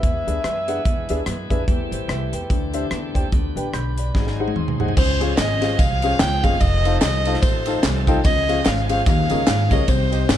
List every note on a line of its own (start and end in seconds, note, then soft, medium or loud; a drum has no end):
0.00 0.24 E2 medium
0.00 3.28 E3 soft
0.00 1.66 G#3 soft
0.00 1.64 B3 soft
0.00 1.66 D4 soft
0.00 1.66 G#4 medium
0.00 1.52 E5 medium
0.00 kick medium
0.00 closed hi-hat medium
0.04 0.65 E3 medium
0.27 0.42 D2 medium
0.27 0.37 D4 medium
0.27 0.37 G#4 medium
0.27 0.37 B4 medium
0.27 0.37 E5 medium
0.27 closed hi-hat medium
0.44 0.79 F#2 medium
0.44 cross-stick loud
0.44 closed hi-hat medium
0.68 0.78 D4 medium
0.68 0.78 G#4 medium
0.68 0.78 B4 medium
0.68 0.78 F#5 medium
0.68 closed hi-hat medium
0.85 1.06 E2 medium
0.85 kick loud
0.85 closed hi-hat medium
1.09 1.24 D2 medium
1.09 1.20 D4 medium
1.09 1.20 G#4 medium
1.09 1.20 B4 medium
1.09 1.20 E5 medium
1.09 closed hi-hat medium
1.26 1.47 F#2 medium
1.26 cross-stick medium
1.26 closed hi-hat medium
1.50 1.65 F2 medium
1.50 1.60 D4 medium
1.50 1.60 G#4 medium
1.50 1.60 B4 medium
1.50 1.61 E5 medium
1.50 kick medium
1.50 closed hi-hat medium
1.68 1.88 E2 medium
1.68 2.29 E3 medium
1.68 2.49 G3 soft
1.68 3.31 A3 soft
1.68 3.31 C4 soft
1.68 4.12 G4 medium
1.68 kick loud
1.68 closed hi-hat medium
1.91 2.06 A1 medium
1.91 2.08 E4 soft
1.91 2.08 C5 medium
1.91 closed hi-hat medium
2.08 2.29 C2 medium
2.08 2.33 G4 medium
2.08 2.32 E5 medium
2.08 cross-stick loud
2.08 closed hi-hat medium
2.33 2.47 E2 medium
2.33 2.73 B4 soft
2.33 2.72 G5 medium
2.33 cross-stick soft
2.33 closed hi-hat medium
2.50 2.85 D2 medium
2.50 3.11 D3 medium
2.50 4.13 D4 medium
2.50 kick loud
2.50 closed hi-hat medium
2.74 2.84 D4 medium
2.74 2.84 G4 medium
2.74 2.84 C5 medium
2.74 2.84 E5 medium
2.74 closed hi-hat medium
2.91 3.12 E2 medium
2.91 cross-stick loud
2.91 closed hi-hat medium
3.14 3.30 D#2 medium
3.14 3.25 D4 medium
3.14 3.25 G4 medium
3.14 3.25 C5 medium
3.14 3.25 G5 medium
3.14 kick medium
3.14 closed hi-hat medium
3.32 3.53 D2 medium
3.32 3.93 D3 medium
3.32 4.14 B3 medium
3.32 kick loud
3.32 closed hi-hat medium
3.56 3.71 A1 medium
3.56 3.66 D4 medium
3.56 3.66 G4 medium
3.56 3.66 B4 medium
3.56 3.67 G5 medium
3.56 closed hi-hat medium
3.73 4.08 B1 medium
3.73 3.97 B5 medium
3.73 3.96 G6 medium
3.73 cross-stick medium
3.73 closed hi-hat medium
3.98 4.37 D5 soft
3.98 4.37 B5 medium
3.98 closed hi-hat medium
4.14 4.50 G#1 medium
4.14 4.76 G#2 medium
4.14 4.96 F#3 medium
4.14 4.96 G#3 soft
4.14 4.96 C4 soft
4.14 4.96 D#4 medium
4.14 4.96 G#4 medium
4.14 kick loud
4.14 snare soft
4.27 snare soft
4.40 4.49 D#4 medium
4.40 4.49 G#4 medium
4.40 4.49 C5 medium
4.40 4.49 F#5 medium
4.48 high tom medium
4.56 4.76 D#2 medium
4.56 4.79 C6 medium
4.56 mid tom medium
4.68 mid tom medium
4.80 4.95 D2 medium
4.80 4.90 D#4 medium
4.80 4.90 G#4 medium
4.80 4.90 C5 medium
4.80 4.96 D#5 medium
4.80 4.90 F#5 medium
4.80 floor tom medium
4.88 floor tom medium
4.97 5.32 C#2 loud
4.97 5.58 C#3 medium
4.97 8.21 F3 medium
4.97 6.59 G#3 medium
4.97 9.03 C4 medium
4.97 6.59 C#4 medium
4.97 6.59 G#4 medium
4.97 5.35 C5 loud
4.97 kick loud
4.97 crash loud
4.97 tambourine medium
5.21 5.31 C#4 medium
5.21 5.31 F4 medium
5.21 5.31 G#4 medium
5.21 5.31 C5 medium
5.21 5.31 F5 medium
5.21 ride medium
5.21 tambourine medium
5.37 5.73 G#1 medium
5.37 5.80 D#5 loud
5.37 snare loud
5.37 clap loud
5.37 ride medium
5.37 tambourine loud
5.61 5.71 C#4 medium
5.61 5.71 F4 medium
5.61 5.72 G#4 medium
5.61 5.71 C5 medium
5.61 5.72 F5 medium
5.61 snare soft
5.61 ride medium
5.61 tambourine soft
5.79 6.14 C2 medium
5.79 6.21 F5 loud
5.79 kick loud
5.79 ride medium
5.79 tambourine medium
6.02 6.13 C#4 medium
6.02 6.13 F4 medium
6.02 6.13 G#4 medium
6.02 6.13 C5 medium
6.02 6.13 F5 medium
6.02 ride medium
6.02 tambourine medium
6.19 6.40 C#2 loud
6.19 6.45 G5 loud
6.19 snare loud
6.19 clap loud
6.19 ride medium
6.19 tambourine loud
6.43 6.58 F#1 loud
6.43 6.54 C#4 medium
6.43 6.54 F4 medium
6.43 6.54 G#4 medium
6.43 6.54 C5 medium
6.43 6.54 D#5 medium
6.43 6.62 F5 loud
6.43 kick loud
6.43 ride medium
6.43 tambourine medium
6.60 6.95 F1 loud
6.60 8.23 A3 medium
6.60 8.23 D#4 medium
6.60 8.23 A4 medium
6.60 7.00 D#5 loud
6.60 kick loud
6.60 ride medium
6.60 tambourine medium
6.85 6.95 D#4 medium
6.85 6.95 F4 medium
6.85 6.95 A4 medium
6.85 6.95 C5 medium
6.85 6.95 F5 medium
6.85 ride medium
6.85 tambourine medium
7.01 7.37 C2 loud
7.01 7.44 D#5 loud
7.01 snare loud
7.01 clap loud
7.01 ride medium
7.01 tambourine loud
7.25 7.36 D#4 medium
7.25 7.36 F4 medium
7.25 7.36 A4 medium
7.25 7.36 C5 medium
7.25 7.36 F5 medium
7.25 ride medium
7.25 tambourine medium
7.34 snare soft
7.42 7.77 A1 medium
7.42 8.07 C5 medium
7.42 kick loud
7.42 ride medium
7.42 tambourine medium
7.66 7.77 D#4 medium
7.66 7.77 F4 medium
7.66 7.77 A4 medium
7.66 7.77 C5 medium
7.66 7.77 F5 medium
7.66 ride medium
7.66 tambourine medium
7.83 8.19 C2 medium
7.83 snare loud
7.83 clap loud
7.83 ride medium
7.83 tambourine loud
8.07 8.17 D#4 loud
8.07 8.18 F4 medium
8.07 8.18 A4 medium
8.07 8.18 C5 medium
8.07 8.18 G5 loud
8.07 kick loud
8.07 ride medium
8.07 tambourine medium
8.24 8.59 C#2 loud
8.24 8.86 C#3 medium
8.24 9.87 F3 medium
8.24 9.06 G#3 medium
8.24 9.06 C#4 medium
8.24 9.87 G#4 medium
8.24 8.67 D#5 loud
8.24 kick loud
8.24 ride medium
8.24 tambourine medium
8.48 8.58 C#4 medium
8.48 8.58 F4 medium
8.48 8.58 G#4 medium
8.48 8.58 C5 medium
8.48 8.58 F5 medium
8.48 ride medium
8.48 tambourine medium
8.65 9.00 G#1 medium
8.65 8.89 F5 loud
8.65 snare loud
8.65 clap loud
8.65 ride medium
8.65 tambourine loud
8.89 8.99 C#4 medium
8.89 8.99 F4 medium
8.89 8.99 G#4 medium
8.89 9.00 C5 medium
8.89 9.05 F5 loud
8.89 9.00 F5 medium
8.89 ride medium
8.89 tambourine medium
9.06 9.27 D#2 loud
9.06 9.67 D#3 medium
9.06 9.88 A#3 medium
9.06 9.88 C#4 medium
9.06 10.38 D#4 medium
9.06 9.73 F5 medium
9.06 kick loud
9.06 ride medium
9.06 tambourine medium
9.30 9.45 C#2 medium
9.30 9.40 C#4 medium
9.30 9.40 F4 medium
9.30 9.40 G#4 medium
9.30 9.40 A#4 medium
9.30 9.40 D#5 medium
9.30 ride medium
9.30 tambourine medium
9.47 9.68 G#2 loud
9.47 snare loud
9.47 clap loud
9.47 ride medium
9.47 tambourine loud
9.71 9.85 C#2 loud
9.71 9.82 C#4 medium
9.71 9.82 F4 medium
9.71 9.82 G#4 medium
9.71 9.82 A#4 medium
9.71 9.82 C#5 medium
9.71 9.89 D#5 loud
9.71 kick loud
9.71 ride medium
9.71 tambourine medium
9.88 10.23 C2 loud
9.88 10.38 C3 medium
9.88 10.38 C4 medium
9.88 10.38 G4 medium
9.88 10.38 C5 loud
9.88 kick loud
9.88 ride medium
9.88 tambourine medium
10.12 10.22 G4 medium
10.12 10.22 C5 medium
10.12 10.22 D#5 medium
10.12 ride medium
10.12 tambourine medium
10.29 10.38 G1 loud
10.29 snare loud
10.29 clap loud
10.29 ride medium
10.29 tambourine loud